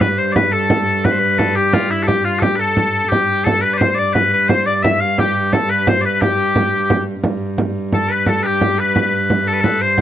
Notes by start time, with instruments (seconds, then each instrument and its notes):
Already playing: viola da gamba G2
0.01 shawm B4, bagpipes B4, frame drum
0.18 shawm C5, bagpipes C5
0.32 shawm B4, bagpipes B4 D5, frame drum
0.52 bagpipes A4, shawm A4
0.70 frame drum
1.04 bagpipes B4, shawm B4, frame drum
1.12 shawm C5
1.19 shawm B4
1.38 bagpipes A4, frame drum
1.56 bagpipes G4, shawm G4
1.73 bagpipes F4, frame drum
1.91 bagpipes E4, shawm E4
2.03 bagpipes A4
2.07 shawm G4, bagpipes G4, frame drum
2.25 bagpipes F4, shawm F4, frame drum
2.39 shawm G4, bagpipes G4 A4, frame drum
2.56 shawm A4, bagpipes B4
2.60 bagpipes A4, frame drum
2.77 frame drum
3.09 viola da gamba G2, bagpipes G4, shawm G4, frame drum
3.44 bagpipes A4, shawm A4, frame drum
3.61 bagpipes B4, shawm B4
3.73 bagpipes D5
3.78 bagpipes C5, frame drum
3.82 shawm C5
3.95 bagpipes D5
3.99 shawm D5
4.13 bagpipes B4, shawm B4, frame drum
4.33 shawm B4
4.48 bagpipes C5, shawm C5, frame drum
4.66 bagpipes D5, shawm D5
4.83 bagpipes E5, shawm E5, frame drum
5.00 bagpipes F5, shawm F5
5.18 bagpipes G4, shawm G4, frame drum
5.53 bagpipes A4, shawm A4, frame drum
5.70 bagpipes B4, shawm B4
5.87 shawm C5, bagpipes C5, frame drum
6.01 bagpipes B4 D5
6.06 shawm B4
6.21 bagpipes G4, shawm G4, frame drum
6.55 frame drum
6.90 frame drum
7.24 viola da gamba G2, frame drum
7.58 frame drum
7.92 shawm A4, bagpipes A4, frame drum
8.11 shawm B4, bagpipes B4
8.26 shawm A4, bagpipes A4, frame drum
8.43 shawm G4, bagpipes G4 B4
8.61 frame drum
8.79 shawm B4, bagpipes B4
8.96 frame drum
9.30 frame drum
9.47 shawm A4, bagpipes A4
9.54 shawm B4
9.61 shawm A4, bagpipes B4, frame drum
9.82 bagpipes C5, shawm C5
9.98 frame drum